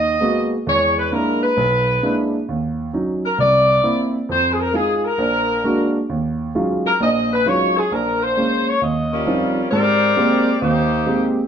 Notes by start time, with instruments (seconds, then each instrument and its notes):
Already playing: grand piano D#2 D#3, saxophone section D#5
0.21 grand piano G#3 A#3 B3 F#4
0.67 grand piano E2 G#3, saxophone section C#5
0.99 saxophone section B4
1.12 grand piano G#3 A#3 D4 E4, saxophone section A#4
1.43 saxophone section B4
1.57 grand piano B1
2.02 grand piano G#3 A#3 D4 E4
2.49 grand piano D#2
2.93 grand piano F#3 C#4 D#4
3.25 saxophone section A#4
3.38 grand piano C2, saxophone section D5
3.83 grand piano A#3 C4 E4
4.29 grand piano F2, saxophone section C5
4.53 saxophone section G#4
4.61 saxophone section A#4
4.73 grand piano G#3 D#4 F4, saxophone section G#4
4.96 saxophone section G#4
5.05 saxophone section A#4
5.18 grand piano A#1
5.64 grand piano G#3 A#3 D4 F#4
6.09 grand piano D#2
6.55 grand piano F#3 G#3 C#4 D#4 F4
6.87 saxophone section A#4
7.00 grand piano A#1 A#2, saxophone section D#5
7.33 saxophone section B4
7.46 grand piano F#3 G#3 C#4 D#4 F4, saxophone section C#5
7.78 saxophone section G#4
7.92 grand piano A#1, saxophone section A#4
8.23 saxophone section C5
8.37 grand piano G#3 A#3 C#4
8.69 saxophone section C#5
8.82 grand piano D#2, saxophone section D#5
9.13 saxophone section G3 C#4 F4 A#4
9.27 grand piano F3 G3 C4 C#4 D#4
9.71 grand piano G#2, saxophone section C4 G4 A#4 D5
10.16 grand piano G#3 A#3 C4 G4
10.61 grand piano D#2, saxophone section A#3 D#4 G4 C5
11.06 grand piano G#3 A#3 C4 G4